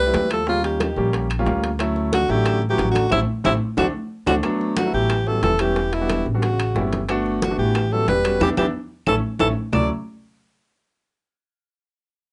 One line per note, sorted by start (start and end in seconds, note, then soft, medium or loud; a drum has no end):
0.00 0.10 C2 medium
0.00 0.28 G3 medium
0.00 0.29 B4 loud
0.07 0.35 G3 medium
0.07 0.35 A3 medium
0.07 0.35 C4 medium
0.07 0.35 E4 medium
0.14 0.91 D#2 medium
0.14 high bongo medium
0.14 low bongo medium
0.14 high conga medium
0.14 high timbale medium
0.14 low timbale medium
0.30 0.46 F3 medium
0.30 0.47 A4 medium
0.30 high bongo soft
0.30 high timbale medium
0.30 claves medium
0.47 0.62 C#3 medium
0.47 0.83 G3 medium
0.47 0.82 A#3 medium
0.47 0.82 C#4 medium
0.47 0.82 F4 medium
0.47 0.64 F4 loud
0.47 high bongo medium
0.47 high conga soft
0.63 0.79 D#3 medium
0.63 0.80 G4 medium
0.63 high bongo soft
0.63 high conga soft
0.63 high timbale medium
0.80 1.11 D#3 medium
0.80 1.12 G4 medium
0.80 high bongo medium
0.80 high conga medium
0.80 high timbale medium
0.80 claves medium
0.96 1.43 A#1 medium
0.96 1.26 G3 medium
0.96 1.26 A#3 medium
0.96 1.26 C#4 medium
0.96 1.26 G4 medium
0.96 high bongo soft
1.13 high bongo medium
1.13 high conga soft
1.13 high timbale medium
1.30 high conga soft
1.30 high timbale medium
1.30 claves medium
1.39 1.68 G3 medium
1.39 1.68 A#3 medium
1.39 1.68 C#4 medium
1.39 1.68 F4 loud
1.46 2.23 D2 medium
1.46 high bongo medium
1.46 low bongo medium
1.46 high conga soft
1.46 low timbale medium
1.63 high bongo soft
1.63 high timbale medium
1.79 2.15 F#3 medium
1.79 2.15 A3 medium
1.79 2.15 C#4 medium
1.79 2.15 E4 medium
1.79 high bongo medium
1.79 high conga soft
1.79 high timbale medium
1.79 claves medium
1.96 high bongo soft
1.96 high conga soft
2.12 2.29 D3 medium
2.12 2.32 F#4 loud
2.12 high bongo medium
2.12 high conga medium
2.12 high timbale medium
2.28 2.75 A1 medium
2.28 2.62 D3 loud
2.28 2.58 F#3 medium
2.28 2.58 A3 medium
2.28 2.58 C#4 medium
2.28 2.58 E4 medium
2.28 2.63 G4 loud
2.28 high bongo soft
2.28 high conga soft
2.46 high bongo medium
2.46 high conga soft
2.46 high timbale medium
2.46 claves medium
2.62 high conga soft
2.69 2.89 E3 medium
2.69 3.00 F#3 medium
2.69 2.99 A3 medium
2.69 2.99 C#4 medium
2.69 3.00 F#4 medium
2.69 2.89 G4 medium
2.78 3.09 A1 medium
2.78 high bongo medium
2.78 low bongo medium
2.78 high conga medium
2.78 high timbale medium
2.91 3.10 D3 medium
2.91 3.11 F#4 medium
2.91 high bongo soft
2.95 high conga medium
2.95 high timbale medium
2.95 claves medium
3.11 3.24 A1 medium
3.11 3.19 C3 medium
3.11 3.22 A3 loud
3.11 3.23 C4 medium
3.11 3.23 E4 loud
3.11 3.20 E4 loud
3.11 low bongo medium
3.11 high conga loud
3.11 high timbale medium
3.11 claves loud
3.44 3.57 A1 medium
3.44 3.52 C3 loud
3.44 3.55 A3 loud
3.44 3.55 C4 loud
3.44 3.55 E4 loud
3.44 3.53 E4 medium
3.44 low bongo medium
3.44 high conga medium
3.44 high timbale loud
3.44 claves medium
3.77 3.90 D2 medium
3.77 3.85 D3 medium
3.77 3.89 A3 loud
3.77 3.89 C4 loud
3.77 3.88 D4 loud
3.77 3.87 F#4 medium
3.77 low bongo loud
3.77 high conga loud
3.77 high timbale medium
3.77 claves medium
4.26 4.39 D2 medium
4.26 4.35 D3 medium
4.26 4.38 A3 medium
4.26 4.38 C4 medium
4.26 4.38 D4 medium
4.26 4.35 F#4 medium
4.26 low bongo loud
4.26 high conga medium
4.26 high timbale loud
4.26 claves medium
4.43 4.73 F#3 medium
4.43 4.73 A3 medium
4.43 4.73 B3 medium
4.43 4.73 D4 loud
4.43 high bongo medium
4.43 high conga soft
4.43 high timbale medium
4.43 claves medium
4.60 high bongo soft
4.60 high conga soft
4.77 4.92 D3 medium
4.77 4.93 F#4 medium
4.77 high bongo medium
4.77 high conga loud
4.77 high timbale medium
4.85 5.10 F#3 medium
4.85 5.10 A3 medium
4.85 5.10 B3 medium
4.85 5.10 E4 medium
4.93 5.40 A1 medium
4.93 5.28 E3 medium
4.93 5.29 G4 loud
4.93 high bongo soft
4.93 high conga soft
5.10 high bongo medium
5.10 high conga soft
5.10 high timbale medium
5.10 claves medium
5.26 5.42 F#3 medium
5.26 5.50 G3 medium
5.26 5.50 B3 medium
5.26 5.50 C#4 medium
5.26 5.50 E4 medium
5.26 5.43 A4 medium
5.26 high conga soft
5.42 6.20 E1 medium
5.42 5.59 E3 medium
5.42 5.62 A4 loud
5.42 high bongo medium
5.42 low bongo medium
5.42 high conga medium
5.42 high timbale medium
5.59 5.95 E3 medium
5.59 5.77 G3 medium
5.59 5.77 B3 medium
5.59 5.77 C#4 medium
5.59 5.77 E4 medium
5.59 5.95 G4 loud
5.59 high bongo soft
5.59 high timbale medium
5.59 claves medium
5.76 high bongo medium
5.76 high conga soft
5.93 6.26 B2 medium
5.93 6.26 E4 medium
5.93 high bongo soft
5.93 high conga soft
5.93 high timbale medium
6.01 6.24 G3 medium
6.01 6.24 B3 medium
6.01 6.25 D4 medium
6.01 6.25 F#4 medium
6.10 high bongo medium
6.10 high conga medium
6.10 high timbale medium
6.10 claves medium
6.26 6.72 A1 medium
6.26 high bongo soft
6.34 6.43 G3 medium
6.34 6.43 B3 medium
6.34 6.43 D4 medium
6.34 6.43 F#4 medium
6.42 6.89 C#3 medium
6.42 6.89 F#4 medium
6.42 high bongo medium
6.42 high conga soft
6.42 high timbale medium
6.59 high conga soft
6.59 high timbale medium
6.59 claves medium
6.75 7.52 G1 medium
6.75 6.99 G3 medium
6.75 6.99 B3 medium
6.75 6.99 C#4 medium
6.75 6.99 E4 medium
6.75 high bongo medium
6.75 low bongo medium
6.75 high conga soft
6.75 low timbale medium
6.92 high bongo soft
6.92 high conga medium
6.92 high timbale medium
7.09 7.38 A3 medium
7.09 7.38 B3 medium
7.09 7.38 D4 medium
7.09 7.38 F#4 loud
7.09 high bongo medium
7.09 high conga soft
7.09 high timbale medium
7.09 claves medium
7.25 high bongo soft
7.25 high conga soft
7.42 7.58 D3 medium
7.42 7.58 F#4 medium
7.42 high bongo medium
7.42 high conga loud
7.42 high timbale medium
7.51 7.75 A3 medium
7.51 7.75 B3 medium
7.51 7.75 D4 medium
7.51 7.75 F#4 medium
7.57 8.04 A1 medium
7.57 7.93 E3 medium
7.57 7.94 G4 medium
7.57 high bongo soft
7.57 high conga soft
7.75 high bongo medium
7.75 high conga soft
7.75 high timbale medium
7.75 claves medium
7.91 8.07 F#3 medium
7.91 8.15 G3 medium
7.91 8.15 B3 medium
7.91 8.15 C#4 medium
7.91 8.15 E4 medium
7.91 8.08 A4 medium
7.91 high conga soft
8.07 8.38 E1 medium
8.07 8.38 G3 medium
8.07 8.39 B4 loud
8.07 high bongo medium
8.07 low bongo medium
8.07 high conga medium
8.07 high timbale medium
8.07 low timbale medium
8.24 8.41 G3 medium
8.24 8.40 B3 medium
8.24 8.41 C#4 medium
8.24 8.41 F#4 medium
8.24 high bongo soft
8.24 high timbale loud
8.24 claves medium
8.40 8.53 E2 medium
8.40 8.49 E3 medium
8.40 8.52 B3 medium
8.40 8.52 D4 medium
8.40 8.52 E4 medium
8.40 8.50 G4 loud
8.40 low bongo medium
8.40 high conga medium
8.40 high timbale medium
8.40 claves loud
8.57 8.70 E2 medium
8.57 8.66 E3 medium
8.57 8.68 B3 medium
8.57 8.68 D4 loud
8.57 8.68 E4 medium
8.57 8.66 G4 medium
8.57 low bongo medium
8.57 high conga medium
8.57 high timbale medium
8.57 claves medium
9.06 9.19 A1 medium
9.06 9.15 E3 medium
9.06 9.18 A3 medium
9.06 9.18 C#4 medium
9.06 9.18 E4 medium
9.06 9.16 A4 medium
9.06 low bongo medium
9.06 high conga loud
9.06 high timbale medium
9.06 claves loud
9.39 9.52 A1 medium
9.39 9.47 E3 medium
9.39 9.51 A3 medium
9.39 9.51 C#4 medium
9.39 9.51 E4 medium
9.39 9.48 A4 medium
9.39 low bongo medium
9.39 high conga loud
9.39 high timbale medium
9.39 claves medium
9.72 9.88 D2 medium
9.72 9.89 F#3 medium
9.72 9.88 A3 medium
9.72 9.89 A3 medium
9.72 9.89 C#4 medium
9.72 9.89 E4 medium
9.72 9.89 D5 medium
9.72 low bongo medium
9.72 low conga loud
9.72 low timbale medium
9.72 claves loud